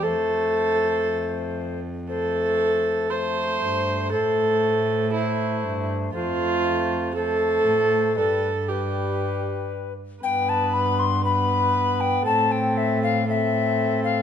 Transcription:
<<
  \new Staff \with { instrumentName = "Recorder" } { \time 4/4 \key g \mixolydian \tempo 4 = 118 c''2.~ c''8 r8 | c''2 c''2 | c''2 c''2 | c''2 c''2 |
b'8 r8 b'2~ b'8 r8 | g''8 a''8 b''8 c'''8 b''4. g''8 | a''8 g''8 e''8 f''8 e''4. f''8 | }
  \new Staff \with { instrumentName = "Viola" } { \time 4/4 \key g \mixolydian a'2.~ a'8 r8 | a'2 c''2 | a'2 e'4. r8 | f'2 a'2 |
a'4 g'2 r4 | b'2 b'2 | a'2 a'2 | }
  \new Staff \with { instrumentName = "Trombone" } { \time 4/4 \key g \mixolydian a2.~ a8 r8 | a2 a2 | a2 a2 | a2 a2 |
g8 r8 g2~ g8 r8 | b2 b2 | c'2 c'2 | }
  \new Staff \with { instrumentName = "Cello" } { \clef bass \time 4/4 \key g \mixolydian f,1~ | f,2. g,4 | a,2. g,4 | f,2. a,4 |
g,2.~ g,8 r8 | g,1 | a,1 | }
>>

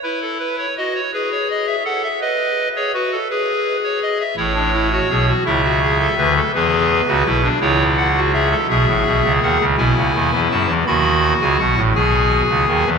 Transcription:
<<
  \new Staff \with { instrumentName = "Pipe organ" } { \time 6/8 \key e \mixolydian \tempo 4. = 55 << { b'16 a'16 b'16 cis''16 dis''16 cis''16 b'16 cis''16 dis''16 e''16 fis''16 e''16 | dis''8. cis''16 b'16 a'16 b'8. cis''16 dis''16 e''16 | cis''4. e''4. | b'4. cis''8 fis''8 e''8 |
e''4 fis''8 gis''4 a''8 | b''8. gis''16 fis''8 gis''4. | } \\ { e'4 fis'8 gis'4 a'8 | b'8. gis'16 fis'8 gis'4. | e'16 d'16 e'16 fis'16 gis'16 fis'16 e'16 fis'16 gis'16 a'16 b'16 a'16 | gis'8. fis'16 e'16 d'16 e'8. fis'16 gis'16 a'16 |
gis'4. e'4. | fis'4. gis'4. | } >> }
  \new Staff \with { instrumentName = "Pipe organ" } { \clef bass \time 6/8 \key e \mixolydian r2. | r2. | <a,, a,>4 <b,, b,>8 <cis, cis>4 <d, d>8 | <e, e>8. <cis, cis>16 <b,, b,>8 <cis, cis>4. |
<b,, b,>16 <a,, a,>16 <b,, b,>16 <cis, cis>16 <dis, dis>16 <cis, cis>16 <b,, b,>16 <cis, cis>16 <dis, dis>16 <e, e>16 <fis, fis>16 <e, e>16 | <dis, dis>8. <cis, cis>16 <b,, b,>16 <a,, a,>16 <b,, b,>8. <cis, cis>16 <dis, dis>16 <e, e>16 | }
>>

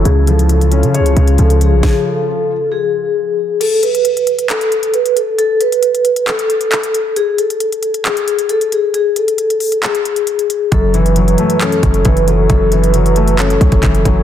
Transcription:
<<
  \new Staff \with { instrumentName = "Vibraphone" } { \time 4/4 \key fis \minor \tempo 4 = 135 gis'8 a'4. gis'4 a'8 gis'8 | gis'8 a'4. gis'2 | a'8 b'4. a'4 b'8 a'8 | a'8 b'4. a'2 |
gis'8 a'4. gis'4 a'8 gis'8 | gis'8 a'4. gis'2 | a'8 b'4. a'4 b'8 a'8 | a'8 b'4. a'2 | }
  \new Staff \with { instrumentName = "Ambient pad" } { \clef bass \time 4/4 \key fis \minor <cis eis eis'>1 | r1 | r1 | r1 |
r1 | r1 | r1 | r1 | }
  \new Staff \with { instrumentName = "Felt piano" } { \clef bass \time 4/4 \key fis \minor cis8 eis4 cis'8 cis''8 cis8 eis4~ | eis4. r2 r8 | r1 | r1 |
r1 | r1 | fis,8 e8 fis8 a8 cis'8 fis,8 e8 fis8 | fis,8 e8 fis8 a8 cis'8 fis,8 e8 fis8 | }
  \new Staff \with { instrumentName = "808-style bass" } { \clef bass \time 4/4 \key fis \minor cis,4.~ cis,16 cis16. cis,16. cis,8 cis,8. b,,16 | r1 | r1 | r1 |
r1 | r1 | fis,,4. r4 fis,,8 fis,,4 | fis,,2~ fis,,8 cis,16 fis,,16 fis,,8 fis,,8 | }
  \new DrumStaff \with { instrumentName = "Drums" } \drummode { \time 4/4 hh8 hh16 hh16 hh16 hh16 hh16 hh16 hh16 hh16 hh16 hh16 hh16 hh16 hh8 | <bd sn>4 r4 r4 r4 | <cymc hh>8 hh16 hh16 hh16 hh16 hh16 hh16 <hc hh>16 hh16 hh16 hh16 hh16 hh16 hh8 | hh8 hh16 hh16 hh16 hh16 hh16 hh16 <hc hh>16 hh16 hh16 hh16 <hc hh>16 hh16 hh8 |
hh8 hh16 hh16 hh16 hh16 hh16 hh16 <hc hh>16 hh16 hh16 hh16 hh16 hh16 hh8 | hh8 hh16 hh16 hh16 hh16 hho16 hh16 <hc hh>16 hh16 hh16 hh16 hh16 hh16 hh8 | <hh bd>8 hh16 hh16 hh16 hh16 hh16 hh16 <hc hh>16 hh16 <hh bd>16 hh16 <hh bd>16 hh16 hh8 | <hh bd>8 hh16 hh16 hh16 hh16 hh16 hh16 <hc hh>16 hh16 <hh bd>16 <hh bd>16 <hc hh bd>16 hh16 <hh bd>8 | }
>>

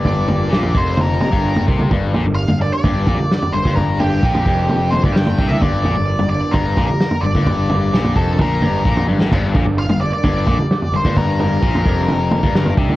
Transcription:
<<
  \new Staff \with { instrumentName = "Lead electric guitar" } { \time 4/4 \key g \minor \tempo 4 = 130 d''4. c''8 bes'4. r8 | r4 f''8 d''16 d''4.~ d''16 c''8 | bes'8 g'2 c''16 d''16 g''8. e''16 | d''4. d''8 bes'8. bes'8. d''8~ |
d''4. a'8 bes'4. r8 | r4 f''8 d''16 d''4.~ d''16 c''8 | bes'8 bes'2. r8 | }
  \new Staff \with { instrumentName = "Clean electric guitar" } { \clef bass \time 4/4 \key g \minor <d g bes d'>8 <d g bes d'>8 r8 <d g bes d'>8 r8 <d g bes d'>8 r8 <d g bes d'>8 | r8 <d g bes d'>8 r8 <d g bes d'>8 r8 <d g bes d'>8 r8 <d g bes d'>8 | r8 <d g bes d'>8 r8 <d g bes d'>8 r8 <d g bes d'>8 r8 <d g bes d'>8 | r8 <d g bes d'>8 r8 <d g bes d'>8 r8 <d g bes d'>8 r8 <d g bes d'>8 |
r8 <d g bes d'>8 r8 <d g bes d'>8 r8 <d g bes d'>8 r8 <d g bes d'>8 | r8 <d g bes d'>8 r8 <d g bes d'>8 r8 <d g bes d'>8 r8 <d g bes d'>8 | r8 <d g bes d'>8 r8 <d g bes d'>8 r8 <d g bes d'>8 r8 <d g bes d'>8 | }
  \new Staff \with { instrumentName = "Overdriven electric guitar" } { \clef bass \time 4/4 \key g \minor g,4 bes,8 f,4~ f,16 g,8. c8 | g,8 bes,16 g,8 g,8 r16 g,8 bes,16 r8. g,16 g,16~ | g,4 bes,8 f,4~ f,16 g,8. c8 | g,8 bes,16 g,8 g,8 r16 g,8 bes,16 r8. g,16 g,16~ |
g,4 bes,8 f,8 bes,8 g,8 bes,8 g,16 a,16 | g,8 bes,16 g,8 g,8 r16 g,8 bes,16 r8. g,16 g,16~ | g,4 bes,8 f,4~ f,16 g,8. c8 | }
  \new Staff \with { instrumentName = "Picked electric bass" } { \clef bass \time 4/4 \key g \minor g,,4 bes,,8 f,,4~ f,,16 g,,8. c,8 | g,,8 bes,,16 g,,8 g,,8 r16 g,,8 bes,,16 r8. g,,16 g,,16~ | g,,4 bes,,8 f,,4~ f,,16 g,,8. c,8 | g,,8 bes,,16 g,,8 g,,8 r16 g,,8 bes,,16 r8. g,,16 g,,16~ |
g,,4 bes,,8 f,,8 bes,,8 g,,8 bes,,8 g,,16 a,,16 | g,,8 bes,,16 g,,8 g,,8 r16 g,,8 bes,,16 r8. g,,16 g,,16~ | g,,4 bes,,8 f,,4~ f,,16 g,,8. c,8 | }
  \new DrumStaff \with { instrumentName = "Drums" } \drummode { \time 4/4 <bd tomfh>8 tomfh8 sn16 tomfh16 bd8 <tomfh toml>8 tomfh16 bd16 r16 tomfh16 bd16 toml16 | <bd tomfh>8 tomfh8 r16 tomfh8. <bd tomfh>8 <bd tomfh>16 toml16 sn16 tomfh8 <bd toml>16 | <bd tomfh>8 tomfh8 bd16 tomfh16 bd8 tomfh8 tomfh16 <bd toml>16 sn16 tomfh16 bd16 toml16 | <bd tomfh>8 tomfh8 r16 tomfh8. <bd tomfh>8 <bd tomfh>16 toml16 sn16 tomfh8 <bd toml>16 |
<bd tomfh>8 tomfh8 sn16 tomfh16 bd8 <bd tomfh toml>8 tomfh8 bd16 tomfh16 tommh16 sn16 | <cymc bd tomfh>8 <bd tomfh>8 r16 tomfh8. <bd tomfh>8 <bd tomfh>16 toml16 sn16 tomfh8 <bd toml>16 | <bd tomfh>8 tomfh8 bd16 tomfh16 bd8 tomfh8 tomfh16 <bd toml>16 sn16 tomfh16 bd16 toml16 | }
>>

